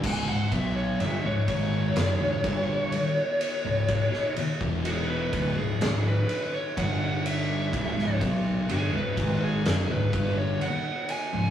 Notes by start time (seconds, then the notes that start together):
0.04 C#1 C#2 G#2 G#5, kick, crash
0.28 C#1 C#2 G#2 F#5
0.51 B1 B2 F#3 B3 E5, kick, ride
0.77 C#5
0.99 G1 G2 D3 E5, ride
1.23 C#1 C#2 G#2 C#5
1.48 G#1 G#2 D#3 G#3 C#5, kick, ride
1.95 F#1 F#2 C#3, snare, ride
2.20 C#1 C#2 G#2
2.43 G1 G2 D3 G3, kick, ride
2.92 muted distorted electric guitar stroke, muted upright bass stroke, ride
3.41 ride
3.65 C#1 C#2 G#2
3.88 kick, ride
4.14 snare
4.36 muted distorted electric guitar stroke, muted upright bass stroke, ride
4.60 E1 E2 B2 E3, kick
4.85 G#4, ride
5.10 B4
5.33 D1 D2 A2, kick, ride
5.57 C#1 C#2 G#2 G#4
5.81 C#1 C#2 G#2, snare, ride
6.08 B4
6.29 ride
6.54 C#5
6.77 G1 G2 D3 G3 F#5, kick, ride
7.26 E5, ride
7.73 C#1 C#2 G#2, kick, ride
7.97 C#1 C#2 G#2, snare
8.21 B1 B2 F#3 B3, kick, ride
8.69 G1 G2 D3 G#4, ride
8.94 C#1 C#2 G#2 B4
9.17 G#1 G#2 D#3 G#3, kick, ride
9.44 G#4
9.65 F#1 F#2 C#3, snare, ride
9.90 C#2 G#2 B4
10.13 G1 G2 D3 G3, kick, ride
10.38 C#5
10.61 F#5, muted upright bass stroke, muted distorted electric guitar stroke, ride
11.09 G#5, ride
11.33 C#1 C#2 G#2